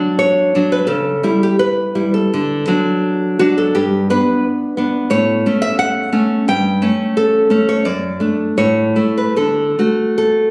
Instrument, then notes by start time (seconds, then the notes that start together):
nylon-string guitar
Already playing: F#3 D4 D5
0.19 C#5
0.55 F#3 D4
0.72 B4
0.87 C#3 A4
1.23 G3 E4
1.43 G4
1.59 B4
1.95 G3 E4
2.14 A4
2.34 D3
2.68 F#3 D4
3.39 F#3 D4 F#4
3.58 A4
3.75 G2 G4
4.10 B3 D4 B4
4.77 B3 D4
5.10 A2 C#5
5.46 A3 C#4
5.62 E5
5.79 F#5
6.12 A3 C#4
6.48 G2 G5
6.82 A3 C#4
7.17 A4
7.50 A3 C#4
7.69 C#5
7.85 F#2 D5
8.20 A3 D4
8.58 A2 C#5
8.96 A3 E4
9.18 B4
9.36 D3 A4
9.79 A3 F#4
10.18 A4